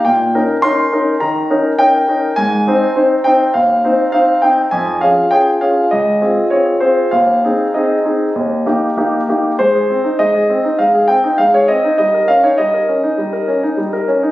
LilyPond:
\new Staff \with { instrumentName = "Grand piano" } { \time 4/4 \key aes \major \tempo 4 = 101 << { g''4 c'''4 bes''4 g''4 | aes''4. g''8 f''4 f''8 g''8 | aes''8 f''8 g''8 f''8 ees''4 des''8 c''8 | f''4 ees''2~ ees''8 r8 |
c''4 ees''4 f''8 g''8 f''16 des''16 ees''8 | ees''8 f''16 des''16 ees''2. | } \\ { bes,8 <des' ees' bes'>8 <des' ees' bes'>8 <des' ees' bes'>8 ees8 <des' ees' bes'>8 <des' ees' bes'>8 <des' ees' bes'>8 | aes,8 <c' ees' c''>8 <c' ees' c''>8 <c' ees' c''>8 ees,8 <c' ees' c''>8 <c' ees' c''>8 <c' ees' c''>8 | f,8 <des' f' aes'>8 <des' f' aes'>8 <des' f' aes'>8 des,8 <c' f' aes'>8 <c' f' aes'>8 <c' f' aes'>8 | ees,8 <c' ees' aes'>8 <c' ees' aes'>8 <c' ees' aes'>8 ees,8 <bes ees' g'>8 <bes ees' g'>8 <bes ees' g'>8 |
aes16 aes'16 c'16 ees'16 aes16 aes'16 c'16 ees'16 aes16 aes'16 c'16 ees'16 aes16 aes'16 c'16 ees'16 | g16 bes'16 des'16 ees'16 g16 bes'16 des'16 ees'16 g16 bes'16 des'16 ees'16 g16 bes'16 des'16 ees'16 | } >> }